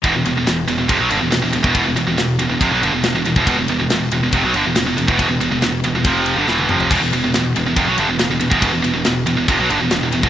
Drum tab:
CC |----------------|----------------|----------------|----------------|
RD |x-x-x-x-x-x-x-x-|x-x-x-x-x-x-x-x-|x-x-x-x-x-x-x-x-|x-x-x-x-x-x-----|
SD |----o-------o---|----o-------o---|----o-------o---|----o-------o---|
T1 |----------------|----------------|----------------|-------------o--|
T2 |----------------|----------------|----------------|--------------o-|
FT |----------------|----------------|----------------|---------------o|
BD |o-------o------o|o-------o------o|o-------o------o|o-------o-------|

CC |x---------------|----------------|
RD |x-x-x-x-x-x-x-x-|x-x-x-x-x-x-x-x-|
SD |----o-------o---|----o-------o---|
T1 |----------------|----------------|
T2 |----------------|----------------|
FT |----------------|----------------|
BD |o-------o------o|o-------o------o|